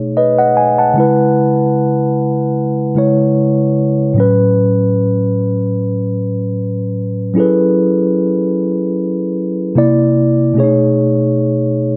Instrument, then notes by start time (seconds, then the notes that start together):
tine electric piano
Already playing: B2 A3 D#4 G#4 C#5
0.17 B4 D#5
0.39 D#5 F#5
0.57 G#5
0.78 F#5 A5
0.94 C#3 G#3
0.98 E4 B4
2.95 C#3 G#3 E4 C#5
4.14 A2 F#3
4.18 C#4 B4
7.34 F#3 C#4 E4 G#4
7.39 A4 B4
9.75 C3 A#3 E4 D5
10.54 B2 A3 C#4
10.58 G#4 C#5
10.63 D#4